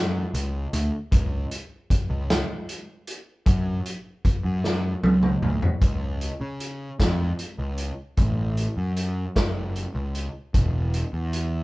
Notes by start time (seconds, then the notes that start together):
Already playing: F#2
0.34 C#2, closed hi-hat
0.73 D2, closed hi-hat
1.12 C#2, kick, closed hi-hat
1.51 closed hi-hat
1.90 kick, closed hi-hat
2.10 C#2
2.30 snare, closed hi-hat
2.69 closed hi-hat
3.07 closed hi-hat
3.46 F#2, kick, closed hi-hat
3.86 closed hi-hat
4.25 kick, closed hi-hat
4.44 F#2
4.64 snare
5.03 C#2, high tom
5.23 mid tom
5.42 D2, mid tom
5.62 floor tom
5.82 C#2, kick, closed hi-hat
6.21 closed hi-hat
6.41 C#3
6.60 closed hi-hat
7.00 F2, kick, snare, closed hi-hat
7.39 closed hi-hat
7.58 C#2
7.78 closed hi-hat
8.17 A1, kick, closed hi-hat
8.57 closed hi-hat
8.77 F#2
8.97 closed hi-hat
9.36 F#1, kick, snare, closed hi-hat
9.76 closed hi-hat
9.95 C#2
10.15 closed hi-hat
10.54 E1, kick, closed hi-hat
10.94 closed hi-hat
11.13 E2
11.33 closed hi-hat